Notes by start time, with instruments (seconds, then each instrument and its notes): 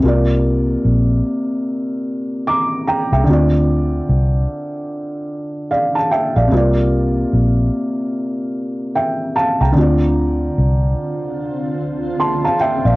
0.00 fingered electric bass C2, felt piano C3 A#3
0.05 felt piano F4 D5
0.85 fingered electric bass A#1
2.47 felt piano A#5 D6
2.87 felt piano G5 A#5
3.12 fingered electric bass C2, felt piano E5 G5
3.24 felt piano D3 C4
3.28 fingered electric bass D2, felt piano F4 D5
4.09 fingered electric bass C2
5.71 felt piano D5 F5
5.95 felt piano F5 A5
6.11 felt piano E5 G5
6.36 fingered electric bass A#1, felt piano D5 F5
6.48 felt piano C3 A#3
6.52 fingered electric bass C2, felt piano F4
6.57 felt piano D5
7.33 fingered electric bass A#1
8.95 felt piano E5 G5
9.36 felt piano F5 A5
9.61 fingered electric bass C2, felt piano G5 A#5
9.72 felt piano D3 C4, ambient pad D3 C4
9.76 fingered electric bass D2, ambient pad F4, felt piano F4
9.81 felt piano D5
10.58 fingered electric bass C2
12.20 felt piano A5 C6
12.45 felt piano F5 A5
12.61 felt piano E5 G5
12.85 fingered electric bass A#1, felt piano D5 F5